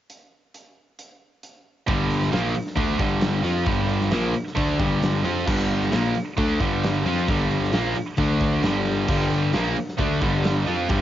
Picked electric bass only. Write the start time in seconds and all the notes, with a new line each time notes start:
1.88 G1
2.32 A#1
2.77 D2
3.00 G1
3.43 F2
3.67 G1
4.11 A#1
4.57 D2
4.79 G1
5.24 F2
5.48 G1
5.92 A#1
6.38 D2
6.60 G1
7.05 F2
7.29 G1
7.72 A#1
8.18 D2
8.63 G1
9.09 G1
9.54 A#1
9.99 D2
10.22 G1
10.66 F2
10.90 G1